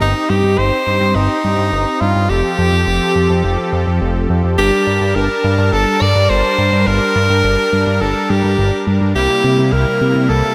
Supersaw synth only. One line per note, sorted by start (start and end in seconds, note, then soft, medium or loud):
0.00 2.28 C4 medium
0.00 2.26 D#4 medium
0.00 2.28 G4 medium
2.29 4.56 F3 medium
2.29 4.56 C4 medium
2.29 4.56 G4 medium
2.29 4.56 A4 medium
4.58 9.11 G3 medium
4.58 9.12 D4 medium
4.58 9.12 A#4 medium
4.58 9.12 A5 medium
9.16 10.55 C3 medium
9.16 10.55 G3 medium
9.16 10.55 A#3 medium
9.16 10.55 E4 medium